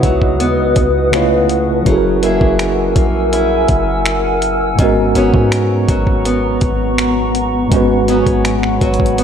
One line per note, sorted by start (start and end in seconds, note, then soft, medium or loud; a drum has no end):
0.00 0.41 C#2 loud
0.00 1.07 C#3 medium
0.00 1.12 C#3 medium
0.00 1.20 F#3 medium
0.00 1.08 G#3 medium
0.00 0.39 B3 medium
0.00 1.09 D#4 medium
0.00 1.10 E4 medium
0.00 1.89 E4 medium
0.00 1.11 F#4 medium
0.00 1.12 B4 medium
0.00 1.83 B4 medium
0.00 1.11 D#5 medium
0.00 1.11 F#5 medium
0.00 1.11 D#6 medium
0.00 kick medium
0.00 closed hi-hat medium
0.22 kick medium
0.40 0.60 D#2 loud
0.40 1.20 B3 medium
0.40 closed hi-hat medium
0.58 0.76 C#2 medium
0.76 1.82 C#2 loud
0.76 kick medium
0.76 closed hi-hat medium
1.11 1.85 C#3 medium
1.11 1.93 C#3 medium
1.11 1.86 A3 medium
1.11 1.86 E4 medium
1.11 1.87 F4 medium
1.11 finger snap loud
1.11 closed hi-hat medium
1.16 1.88 B4 medium
1.49 closed hi-hat medium
1.82 2.39 F#1 loud
1.82 4.73 F#3 medium
1.82 4.74 C#4 medium
1.82 kick loud
1.82 closed hi-hat medium
1.86 4.82 F#3 medium
1.86 4.75 E4 medium
1.86 4.76 G#4 medium
1.86 4.76 A#4 medium
1.86 9.24 F#5 medium
1.86 4.76 G#5 medium
1.86 4.76 E6 medium
1.91 1.95 A4 medium
1.98 4.81 A#4 medium
2.23 2.96 A#3 medium
2.23 3.32 E4 medium
2.23 5.19 G#4 medium
2.23 closed hi-hat medium
2.41 2.94 F#1 loud
2.41 kick medium
2.59 finger snap loud
2.59 closed hi-hat medium
2.96 3.66 A#1 loud
2.96 5.16 A#3 medium
2.96 kick medium
2.96 closed hi-hat medium
3.33 4.86 E4 medium
3.33 closed hi-hat medium
3.68 4.75 F#1 loud
3.68 kick medium
3.68 closed hi-hat medium
4.05 finger snap loud
4.05 closed hi-hat medium
4.42 closed hi-hat medium
4.75 5.14 G#1 loud
4.75 7.66 G#2 medium
4.75 7.67 G#3 medium
4.75 7.67 B3 medium
4.75 9.24 B3 medium
4.75 7.69 A#5 medium
4.75 9.24 C#6 medium
4.75 kick loud
4.75 closed hi-hat medium
4.79 7.70 G#2 medium
4.79 7.68 C#4 medium
4.79 7.69 F#4 medium
4.84 7.70 A#4 medium
5.15 5.33 G#1 loud
5.15 5.88 F#3 medium
5.15 6.25 B3 medium
5.15 8.09 C#4 medium
5.15 closed hi-hat medium
5.34 5.86 G#2 loud
5.34 kick medium
5.52 finger snap loud
5.52 closed hi-hat medium
5.88 6.59 G#1 loud
5.88 8.08 F#3 medium
5.88 kick medium
5.88 closed hi-hat medium
6.07 kick medium
6.25 8.08 B3 medium
6.25 closed hi-hat medium
6.61 7.68 G#1 loud
6.61 kick medium
6.61 closed hi-hat medium
6.98 finger snap loud
6.98 closed hi-hat medium
7.35 closed hi-hat medium
7.67 9.24 G#2 medium
7.67 9.24 G#3 medium
7.67 9.24 B3 medium
7.67 9.24 B5 medium
7.72 8.24 G#1 loud
7.72 9.24 G#2 medium
7.72 9.24 C#4 medium
7.72 9.24 F#4 medium
7.72 kick loud
7.72 closed hi-hat medium
7.77 9.24 B4 medium
8.08 8.81 F#3 medium
8.08 9.18 B3 medium
8.08 9.24 C#4 medium
8.08 closed hi-hat soft
8.27 8.79 G#1 loud
8.27 kick medium
8.27 closed hi-hat soft
8.45 finger snap medium
8.45 closed hi-hat medium
8.63 finger snap medium
8.81 9.24 G#1 loud
8.81 9.24 F#3 medium
8.81 kick medium
8.81 closed hi-hat medium
8.94 closed hi-hat medium
9.00 kick medium
9.06 closed hi-hat medium
9.18 9.24 B3 medium
9.18 closed hi-hat medium